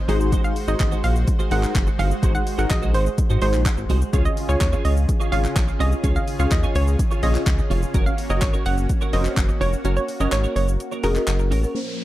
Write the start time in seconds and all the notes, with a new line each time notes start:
Already playing: C5, downlifter
0.08 G#1 G#3 D#4 F#4 G#4 C5, open hi-hat, shaker
0.20 muted clean electric guitar stroke, shaker
0.32 G#3 D#4 F#4 C5, kick, closed hi-hat, shaker
0.44 F5, muted clean electric guitar stroke, shaker
0.56 muted clean electric guitar stroke, open hi-hat, shaker
0.68 G#1 G#3 D#4 F#4 G#4 C5 D#5, shaker
0.80 G#1 D#5, kick, clap, closed hi-hat, shaker
0.91 G#3 D#4 F#4 C5, shaker
1.03 A#1 G#3 D#4 F#4 C5 F5, open hi-hat, shaker
1.15 muted clean electric guitar stroke, shaker
1.27 muted clean electric guitar stroke, kick, closed hi-hat, shaker
1.39 G#3 D#4 F#4 C5, shaker
1.51 G#1 G#3 D#4 F#4 G#4 A#4 C5 F#5, open hi-hat, shaker
1.63 muted clean electric guitar stroke, clap, shaker
1.75 F#1, kick, clap, closed hi-hat, shaker
1.87 muted clean electric guitar stroke, shaker
1.99 G1 G#3 D#4 F#4 C5 F5, open hi-hat, shaker
2.11 muted clean electric guitar stroke, shaker
2.22 G#1 G#3 D#4 F#4 G#4 C5, kick, closed hi-hat, shaker
2.34 F#5, muted clean electric guitar stroke, shaker
2.46 muted clean electric guitar stroke, open hi-hat, shaker
2.58 G#1 G#3 D#4 F#4 G#4 A#4 C5 F#5, shaker
2.71 A#1 D#5, kick, clap, closed hi-hat, shaker
2.82 G#3 D#4 F#4 C5, shaker
2.94 G#1 G#3 D#4 F#4 C5, open hi-hat, shaker
3.06 muted clean electric guitar stroke, shaker
3.18 muted clean electric guitar stroke, kick, closed hi-hat, shaker
3.30 G#2 G#3 D#4 F#4 C5, shaker
3.41 G#1 G#3 D#4 F#4 G#4 C5, open hi-hat, shaker
3.54 A#1, muted clean electric guitar stroke, clap, shaker
3.66 kick, clap, closed hi-hat, shaker
3.77 G#1, muted clean electric guitar stroke, shaker
3.89 C2 G#3 D#4 F#4 C5, open hi-hat, shaker
4.01 muted clean electric guitar stroke, shaker
4.13 C#2 C#3 C#4 F4 G#4 C#5, kick, closed hi-hat, shaker
4.25 D#5, muted clean electric guitar stroke, shaker
4.37 muted clean electric guitar stroke, open hi-hat, shaker
4.49 C#2 C#4 F4 G#4 C#5, shaker
4.61 D#2 C#5, kick, clap, closed hi-hat, shaker
4.72 C#4 F4 G#4 C#5, shaker
4.84 C#2 C#4 F4 G#4 C#5 D#5, open hi-hat, shaker
4.96 muted clean electric guitar stroke, shaker
5.08 muted clean electric guitar stroke, kick, closed hi-hat, shaker
5.20 C#4 F4 G#4 C#5, shaker
5.32 G#1 C#4 F4 G#4 C#5 F5, open hi-hat, shaker
5.44 muted clean electric guitar stroke, clap, shaker
5.56 A#1, kick, clap, closed hi-hat, shaker
5.68 muted clean electric guitar stroke, shaker
5.79 C2 C#4 F4 G#4 C#5 D#5, open hi-hat, shaker
5.92 muted clean electric guitar stroke, shaker
6.03 C#2 C#4 F4 G#4 C#5, kick, closed hi-hat, shaker
6.15 F5, muted clean electric guitar stroke, shaker
6.27 muted clean electric guitar stroke, open hi-hat, shaker
6.39 C#2 C#4 F4 G#4 C#5 F5, shaker
6.51 D#2 D#5, muted clean electric guitar stroke, kick, clap, closed hi-hat, shaker
6.63 C#4 F4 G#4 C#5, shaker
6.75 C#2 C#4 F4 G#4 C#5, open hi-hat, shaker
6.87 muted clean electric guitar stroke, shaker
6.99 muted clean electric guitar stroke, kick, closed hi-hat, shaker
7.11 C#4 F4 G#4 C#5, shaker
7.22 A#1 C#4 F4 G#4 C#5 D#5, open hi-hat, shaker
7.34 muted clean electric guitar stroke, clap, shaker
7.47 C#2, kick, clap, closed hi-hat, shaker
7.58 muted clean electric guitar stroke, shaker
7.70 F1 C#4 F4 G#4 C#5, open hi-hat, shaker
7.82 muted clean electric guitar stroke, shaker
7.94 F#1 A#3 C#4 F#4 A#4 C#5, kick, closed hi-hat, shaker
8.06 F5, muted clean electric guitar stroke, shaker
8.18 muted clean electric guitar stroke, open hi-hat, shaker
8.30 F#1 C#4 F#4 A#4 C#5 D#5, shaker
8.42 G#1 C#5, kick, clap, closed hi-hat, shaker
8.53 C#4 F#4 A#4 C#5, shaker
8.65 F#1 C#4 F#4 A#4 C#5 F#5, open hi-hat, shaker
8.77 muted clean electric guitar stroke, shaker
8.89 muted clean electric guitar stroke, kick, closed hi-hat, shaker
9.01 C#4 F#4 A#4 C#5, shaker
9.13 F1 C#4 F#4 A#4 C5 C#5 D#5, open hi-hat, shaker
9.25 muted clean electric guitar stroke, clap, shaker
9.37 F#1, kick, clap, closed hi-hat, shaker
9.49 muted clean electric guitar stroke, shaker
9.61 F1 C#4 F#4 A#4 C#5, open hi-hat, shaker
9.73 muted clean electric guitar stroke, shaker
9.84 F#1 C#4 F#4 A#4 C#5, closed hi-hat, shaker
9.96 C#5, muted clean electric guitar stroke, shaker
10.08 muted clean electric guitar stroke, open hi-hat, shaker
10.20 F#1 C#4 F#4 A#4 C#5 D#5, shaker
10.32 G#1 C#5, muted clean electric guitar stroke, clap, closed hi-hat, shaker
10.43 C#4 F#4 A#4 C#5, shaker
10.56 F#1 C#4 F#4 A#4 C#5, open hi-hat, shaker
10.68 muted clean electric guitar stroke, shaker
10.80 muted clean electric guitar stroke, closed hi-hat, shaker
10.92 C#4 F#4 A#4 C#5, shaker
11.03 F1 C#4 F#4 G#4 A#4 C#5 D#5, open hi-hat, shaker
11.16 A#4, muted clean electric guitar stroke, clap, shaker
11.27 F#1, clap, closed hi-hat, shaker
11.39 muted clean electric guitar stroke, shaker
11.51 A1 C#4 F#4 A#4 C#5, open hi-hat, shaker
11.63 C#4 F#4 A#4 C#5, shaker
11.75 A#2 F3 A#3 C#4 A#4 C5, downlifter